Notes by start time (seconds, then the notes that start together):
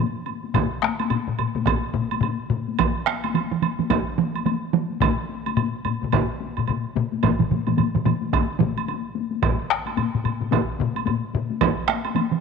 0.26 taiko high, high woodblock
0.44 taiko high
0.54 taiko, taiko low-mid, taiko high, high woodblock
0.82 taiko rim, taiko high
0.99 taiko high, high woodblock
1.10 taiko low-mid, taiko high, high woodblock
1.28 taiko low-mid
1.39 taiko low-mid, taiko high, high woodblock
1.55 taiko low-mid, taiko high
1.66 taiko, taiko low-mid, taiko high, high woodblock
1.94 taiko low-mid, taiko high
2.11 taiko high, high woodblock
2.21 taiko low-mid, taiko high, high woodblock
2.50 taiko low-mid, taiko high
2.68 taiko high
2.79 taiko, taiko mid, taiko high, high woodblock
3.07 taiko rim, taiko high
3.24 taiko high, high woodblock
3.35 taiko mid, taiko high, high woodblock
3.51 taiko mid
3.62 taiko mid, taiko high, high woodblock
3.79 taiko mid, taiko high
3.90 taiko, taiko mid, taiko high, high woodblock
4.18 taiko mid, taiko high
4.35 taiko high, high woodblock
4.46 taiko mid, taiko high, high woodblock
4.73 taiko mid, taiko high
4.90 taiko high
5.01 taiko, taiko low-mid, taiko high, high woodblock
5.29 taiko high
5.46 taiko high, high woodblock
5.57 taiko low-mid, taiko high, high woodblock
5.85 taiko low-mid, taiko high, high woodblock
6.02 taiko low-mid, taiko high
6.12 taiko, taiko low-mid, taiko high, high woodblock
6.40 taiko high
6.57 taiko low-mid, taiko high, high woodblock
6.68 taiko low-mid, taiko high, high woodblock
6.96 taiko low-mid, taiko high
7.12 taiko high
7.23 taiko, taiko low-mid, taiko mid, taiko high, high woodblock
7.39 taiko low-mid, taiko mid
7.50 taiko low-mid, taiko mid, taiko high
7.67 taiko low-mid, taiko mid, taiko high, high woodblock
7.78 taiko low-mid, taiko mid, taiko high, high woodblock
7.95 taiko low-mid, taiko mid
8.05 taiko low-mid, taiko mid, taiko high, high woodblock
8.22 taiko high
8.33 taiko, taiko high, high woodblock
8.60 taiko low-mid, taiko mid, taiko high
8.77 taiko high, high woodblock
8.88 taiko high, high woodblock
9.15 taiko high
9.31 taiko high
9.42 taiko, taiko low-mid, taiko high, high woodblock
9.70 taiko rim
9.86 taiko high, high woodblock
9.97 taiko low-mid, taiko high, high woodblock
10.15 taiko low-mid
10.24 taiko low-mid, taiko high, high woodblock
10.40 taiko low-mid, taiko high
10.51 taiko, taiko low-mid, taiko high, high woodblock
10.79 taiko low-mid, taiko high
10.96 taiko high, high woodblock
11.06 taiko low-mid, taiko high, high woodblock
11.34 taiko low-mid, taiko high
11.50 taiko high
11.61 taiko, taiko mid, taiko high, high woodblock
11.88 taiko rim, taiko high
12.05 taiko high, high woodblock
12.16 taiko mid, taiko high, high woodblock
12.31 taiko mid